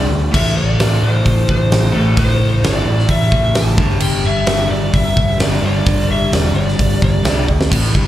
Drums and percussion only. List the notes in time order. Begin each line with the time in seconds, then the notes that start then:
0.34 kick, crash
0.80 snare, open hi-hat
1.26 kick, open hi-hat
1.49 kick
1.72 snare, open hi-hat
1.84 snare
2.17 kick, open hi-hat
2.64 snare, open hi-hat
2.99 snare
3.09 kick, open hi-hat
3.32 kick
3.55 snare, open hi-hat
3.67 snare
3.78 kick
4.00 crash
4.47 snare, open hi-hat
4.94 kick, open hi-hat
5.17 kick
5.40 snare, open hi-hat
5.53 snare
5.86 kick, open hi-hat
6.33 snare, open hi-hat
6.69 snare
6.79 kick, open hi-hat
7.02 kick
7.25 snare, open hi-hat
7.48 kick
7.61 snare
7.72 kick, crash
7.95 kick, crash